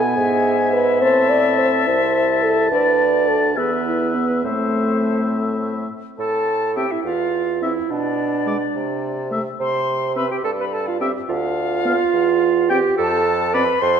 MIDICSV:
0, 0, Header, 1, 6, 480
1, 0, Start_track
1, 0, Key_signature, 0, "minor"
1, 0, Tempo, 566572
1, 862, Time_signature, 6, 3, 24, 8
1, 2784, Tempo, 576923
1, 6624, Tempo, 563380
1, 11819, End_track
2, 0, Start_track
2, 0, Title_t, "Flute"
2, 0, Program_c, 0, 73
2, 141, Note_on_c, 0, 76, 84
2, 2266, Note_off_c, 0, 76, 0
2, 2299, Note_on_c, 0, 74, 76
2, 3009, Note_off_c, 0, 74, 0
2, 3021, Note_on_c, 0, 71, 59
2, 3748, Note_on_c, 0, 72, 57
2, 3761, Note_off_c, 0, 71, 0
2, 4837, Note_off_c, 0, 72, 0
2, 5197, Note_on_c, 0, 81, 60
2, 5641, Note_off_c, 0, 81, 0
2, 5673, Note_on_c, 0, 79, 57
2, 5799, Note_on_c, 0, 76, 51
2, 5812, Note_off_c, 0, 79, 0
2, 5903, Note_off_c, 0, 76, 0
2, 5908, Note_on_c, 0, 77, 59
2, 6375, Note_off_c, 0, 77, 0
2, 6390, Note_on_c, 0, 76, 51
2, 6443, Note_off_c, 0, 76, 0
2, 6627, Note_on_c, 0, 74, 57
2, 7808, Note_off_c, 0, 74, 0
2, 8074, Note_on_c, 0, 84, 71
2, 8520, Note_off_c, 0, 84, 0
2, 8552, Note_on_c, 0, 83, 68
2, 8670, Note_off_c, 0, 83, 0
2, 8676, Note_on_c, 0, 79, 52
2, 8727, Note_off_c, 0, 79, 0
2, 8793, Note_on_c, 0, 81, 71
2, 8844, Note_off_c, 0, 81, 0
2, 8923, Note_on_c, 0, 83, 57
2, 9036, Note_on_c, 0, 81, 64
2, 9049, Note_off_c, 0, 83, 0
2, 9151, Note_on_c, 0, 77, 57
2, 9164, Note_off_c, 0, 81, 0
2, 9260, Note_off_c, 0, 77, 0
2, 9265, Note_on_c, 0, 79, 62
2, 9319, Note_off_c, 0, 79, 0
2, 9514, Note_on_c, 0, 77, 84
2, 10685, Note_off_c, 0, 77, 0
2, 10715, Note_on_c, 0, 79, 79
2, 10768, Note_off_c, 0, 79, 0
2, 10955, Note_on_c, 0, 81, 92
2, 11432, Note_on_c, 0, 83, 80
2, 11445, Note_off_c, 0, 81, 0
2, 11667, Note_on_c, 0, 84, 84
2, 11680, Note_off_c, 0, 83, 0
2, 11819, Note_off_c, 0, 84, 0
2, 11819, End_track
3, 0, Start_track
3, 0, Title_t, "Oboe"
3, 0, Program_c, 1, 68
3, 0, Note_on_c, 1, 80, 77
3, 828, Note_off_c, 1, 80, 0
3, 872, Note_on_c, 1, 81, 74
3, 1572, Note_off_c, 1, 81, 0
3, 1597, Note_on_c, 1, 81, 65
3, 3024, Note_on_c, 1, 76, 57
3, 3037, Note_off_c, 1, 81, 0
3, 3748, Note_off_c, 1, 76, 0
3, 3754, Note_on_c, 1, 76, 52
3, 4937, Note_off_c, 1, 76, 0
3, 5683, Note_on_c, 1, 76, 43
3, 5763, Note_off_c, 1, 76, 0
3, 6397, Note_on_c, 1, 76, 45
3, 6476, Note_off_c, 1, 76, 0
3, 7112, Note_on_c, 1, 74, 45
3, 7195, Note_off_c, 1, 74, 0
3, 7838, Note_on_c, 1, 76, 52
3, 7919, Note_off_c, 1, 76, 0
3, 8553, Note_on_c, 1, 76, 51
3, 8637, Note_off_c, 1, 76, 0
3, 9276, Note_on_c, 1, 76, 57
3, 9357, Note_off_c, 1, 76, 0
3, 10004, Note_on_c, 1, 77, 58
3, 10081, Note_off_c, 1, 77, 0
3, 10708, Note_on_c, 1, 79, 63
3, 10791, Note_off_c, 1, 79, 0
3, 11429, Note_on_c, 1, 74, 66
3, 11511, Note_off_c, 1, 74, 0
3, 11819, End_track
4, 0, Start_track
4, 0, Title_t, "Clarinet"
4, 0, Program_c, 2, 71
4, 0, Note_on_c, 2, 59, 75
4, 859, Note_on_c, 2, 60, 64
4, 872, Note_off_c, 2, 59, 0
4, 1584, Note_on_c, 2, 64, 66
4, 1597, Note_off_c, 2, 60, 0
4, 2297, Note_off_c, 2, 64, 0
4, 2302, Note_on_c, 2, 62, 59
4, 3010, Note_off_c, 2, 62, 0
4, 3022, Note_on_c, 2, 59, 52
4, 3752, Note_on_c, 2, 60, 43
4, 3765, Note_off_c, 2, 59, 0
4, 4960, Note_off_c, 2, 60, 0
4, 5202, Note_on_c, 2, 69, 64
4, 5681, Note_on_c, 2, 67, 62
4, 5694, Note_off_c, 2, 69, 0
4, 5806, Note_on_c, 2, 64, 54
4, 5819, Note_off_c, 2, 67, 0
4, 5916, Note_off_c, 2, 64, 0
4, 5921, Note_on_c, 2, 65, 64
4, 6395, Note_on_c, 2, 64, 57
4, 6408, Note_off_c, 2, 65, 0
4, 6630, Note_on_c, 2, 62, 61
4, 6643, Note_off_c, 2, 64, 0
4, 7833, Note_off_c, 2, 62, 0
4, 8071, Note_on_c, 2, 72, 67
4, 8552, Note_on_c, 2, 71, 69
4, 8564, Note_off_c, 2, 72, 0
4, 8672, Note_off_c, 2, 71, 0
4, 8676, Note_on_c, 2, 67, 63
4, 8784, Note_off_c, 2, 67, 0
4, 8790, Note_on_c, 2, 69, 80
4, 8844, Note_off_c, 2, 69, 0
4, 8922, Note_on_c, 2, 71, 58
4, 8974, Note_off_c, 2, 71, 0
4, 9034, Note_on_c, 2, 69, 63
4, 9150, Note_off_c, 2, 69, 0
4, 9162, Note_on_c, 2, 65, 61
4, 9265, Note_off_c, 2, 65, 0
4, 9271, Note_on_c, 2, 67, 62
4, 9378, Note_off_c, 2, 67, 0
4, 9511, Note_on_c, 2, 65, 87
4, 10711, Note_on_c, 2, 67, 87
4, 10724, Note_off_c, 2, 65, 0
4, 10940, Note_off_c, 2, 67, 0
4, 10945, Note_on_c, 2, 69, 90
4, 11426, Note_on_c, 2, 71, 90
4, 11438, Note_off_c, 2, 69, 0
4, 11655, Note_off_c, 2, 71, 0
4, 11660, Note_on_c, 2, 72, 92
4, 11819, Note_off_c, 2, 72, 0
4, 11819, End_track
5, 0, Start_track
5, 0, Title_t, "French horn"
5, 0, Program_c, 3, 60
5, 136, Note_on_c, 3, 68, 72
5, 609, Note_off_c, 3, 68, 0
5, 617, Note_on_c, 3, 71, 100
5, 855, Note_off_c, 3, 71, 0
5, 861, Note_on_c, 3, 72, 104
5, 1098, Note_on_c, 3, 74, 96
5, 1111, Note_off_c, 3, 72, 0
5, 1335, Note_off_c, 3, 74, 0
5, 1340, Note_on_c, 3, 72, 88
5, 1448, Note_off_c, 3, 72, 0
5, 1583, Note_on_c, 3, 72, 79
5, 2059, Note_on_c, 3, 69, 90
5, 2071, Note_off_c, 3, 72, 0
5, 2294, Note_off_c, 3, 69, 0
5, 2299, Note_on_c, 3, 71, 99
5, 2784, Note_on_c, 3, 69, 76
5, 2796, Note_off_c, 3, 71, 0
5, 3017, Note_off_c, 3, 69, 0
5, 3022, Note_on_c, 3, 68, 65
5, 3131, Note_off_c, 3, 68, 0
5, 3260, Note_on_c, 3, 64, 63
5, 3504, Note_on_c, 3, 59, 61
5, 3517, Note_off_c, 3, 64, 0
5, 3747, Note_off_c, 3, 59, 0
5, 3751, Note_on_c, 3, 57, 68
5, 4935, Note_off_c, 3, 57, 0
5, 5679, Note_on_c, 3, 60, 48
5, 5760, Note_off_c, 3, 60, 0
5, 6388, Note_on_c, 3, 60, 47
5, 6470, Note_off_c, 3, 60, 0
5, 7102, Note_on_c, 3, 56, 51
5, 7188, Note_off_c, 3, 56, 0
5, 7822, Note_on_c, 3, 57, 56
5, 7908, Note_off_c, 3, 57, 0
5, 8547, Note_on_c, 3, 60, 56
5, 8633, Note_off_c, 3, 60, 0
5, 9266, Note_on_c, 3, 60, 51
5, 9351, Note_off_c, 3, 60, 0
5, 9988, Note_on_c, 3, 59, 64
5, 10071, Note_off_c, 3, 59, 0
5, 10716, Note_on_c, 3, 60, 64
5, 10797, Note_off_c, 3, 60, 0
5, 11430, Note_on_c, 3, 60, 67
5, 11511, Note_off_c, 3, 60, 0
5, 11819, End_track
6, 0, Start_track
6, 0, Title_t, "Bassoon"
6, 0, Program_c, 4, 70
6, 0, Note_on_c, 4, 47, 75
6, 108, Note_off_c, 4, 47, 0
6, 142, Note_on_c, 4, 44, 67
6, 864, Note_on_c, 4, 45, 70
6, 876, Note_off_c, 4, 44, 0
6, 1582, Note_off_c, 4, 45, 0
6, 1586, Note_on_c, 4, 36, 59
6, 2289, Note_off_c, 4, 36, 0
6, 2297, Note_on_c, 4, 38, 69
6, 3026, Note_on_c, 4, 40, 61
6, 3038, Note_off_c, 4, 38, 0
6, 3740, Note_off_c, 4, 40, 0
6, 3745, Note_on_c, 4, 45, 51
6, 4932, Note_off_c, 4, 45, 0
6, 5196, Note_on_c, 4, 45, 54
6, 5792, Note_off_c, 4, 45, 0
6, 5911, Note_on_c, 4, 40, 55
6, 6503, Note_off_c, 4, 40, 0
6, 6624, Note_on_c, 4, 47, 54
6, 7228, Note_off_c, 4, 47, 0
6, 7348, Note_on_c, 4, 48, 54
6, 7948, Note_off_c, 4, 48, 0
6, 8068, Note_on_c, 4, 48, 65
6, 8671, Note_off_c, 4, 48, 0
6, 8785, Note_on_c, 4, 43, 62
6, 9385, Note_off_c, 4, 43, 0
6, 9510, Note_on_c, 4, 38, 73
6, 10106, Note_off_c, 4, 38, 0
6, 10228, Note_on_c, 4, 40, 68
6, 10827, Note_off_c, 4, 40, 0
6, 10954, Note_on_c, 4, 41, 84
6, 11548, Note_off_c, 4, 41, 0
6, 11667, Note_on_c, 4, 41, 83
6, 11819, Note_off_c, 4, 41, 0
6, 11819, End_track
0, 0, End_of_file